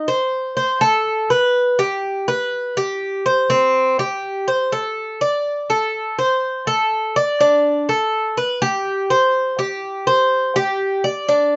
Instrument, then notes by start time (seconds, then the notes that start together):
cuban tres
0.08 C5
0.57 C5
0.81 A4
1.30 B4
1.79 G4
2.28 B4
2.77 G4
3.26 C5
3.50 C4
3.99 G4
4.48 C5
4.72 A4
5.21 D5
5.70 A4
6.19 C5
6.67 A4
7.16 D5
7.41 D4
7.89 A4
8.37 B4
8.62 G4
9.10 C5
9.59 G4
10.07 C5
10.56 G4
11.04 D5
11.29 D4